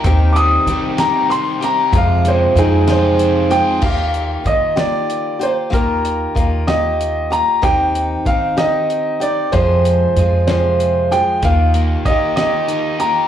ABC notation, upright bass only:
X:1
M:6/8
L:1/8
Q:3/8=63
K:Eb
V:1 name="Upright bass" clef=bass
E,,2 E,4 | F,,2 F,,4 | E,,2 E,4 | E,,2 E,,4 |
E,,2 E,4 | F,,2 F,,4 | E,,2 E,4 |]